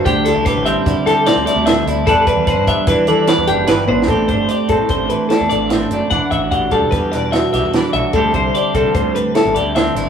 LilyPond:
<<
  \new Staff \with { instrumentName = "Clean electric guitar" } { \time 5/4 \key a \dorian \tempo 4 = 148 g'8 a'8 b'8 e''8 d''8 a'8 d''8 d''8 e''8 d''8 | a'8 b'8 c''8 e''8 b'8 a'8 d''8 g'8 b'8 c''8 | a'8 c''8 d''8 a'8 c''8 b'8 a'8 d''8 e''8 d''8 | fis''8 e''8 fis''8 a'8 b'8 d''8 e''8 e''8 d''8 e''8 |
a'8 c''8 d''8 a'8 c''8 b'8 a'8 d''8 e''8 d''8 | }
  \new Staff \with { instrumentName = "Clean electric guitar" } { \time 5/4 \key a \dorian << { g'8 d'16 e'16 g'8 c'8 e'8 g'8 c'8 e'8 a'8 e'8 | <g b d' b'>8 d'8 b'8 b8 d'8 d''8 b8 d'8 b'8 d'8 | <a c' d' g'>8 d'8 g'8 c'4. d'8 a'8 c'8 d'8 | d'8 fis'8 g'8 d'4. fis'8 g'16 a'16 d'8 fis'8 |
<g c' e' g'>8 e'8 g'8 c'4. e'8 g'8 c'8 e'8 | } \\ { d4. g4. a,4 d4 | e4. g4. e4 e4 | a,4. a4 e4. a,4 | e4. g4 b,4. e4 |
d4. g4 a,4. d4 | } >> }
  \new Staff \with { instrumentName = "Picked electric bass" } { \clef bass \time 5/4 \key a \dorian d,8. d,8 a,,8 r16 d8 d8. d,16 r16 d,8. d,8 | e,8. e,8 g,8 r16 e8 e8. e,16 fis,,8 g,,8 a,,8 | a,,8 g,,8 r8 g,,16 a,16 a,,8 r8. e,16 a,,4 fis,,16 r16 | e,,16 r16 a,,4 d,16 e,,16 e,4. b,,16 e,8 r16 b,,16 r16 |
d,8 c,8 r8 c,16 d16 d,8 r8. a,,16 d,4 a,,16 r16 | }
  \new DrumStaff \with { instrumentName = "Drums" } \drummode { \time 5/4 <hh bd>8 <hh sn>8 <hh bd sn>8 hh8 <hh bd sn>8 <hh sn>8 <hh sn>8 <hh sn>8 <hh sn>8 hh8 | <hh bd>8 <hh bd>8 <hh bd>8 <hh bd>8 <hh bd sn>8 hh8 <hh sn>8 hh8 \tuplet 3/2 { <hh sn>16 r16 r16 tommh16 r16 sn16 } | <hh bd>8 <hh bd>8 hh8 <hh bd>8 <hh bd>8 hh8 <hh sn>8 hh8 <hh sn>8 hh8 | <hh bd>8 <hh bd>8 <hh bd>8 <hh bd>8 <hh bd sn>8 <hh sn>8 <hh sn>8 <hh sn>8 <hh sn>8 hh8 |
<hh bd>8 <hh bd>8 hh8 <hh bd>8 <hh bd>8 hh8 <hh sn>8 hh8 <hh sn>8 <hh sn>8 | }
>>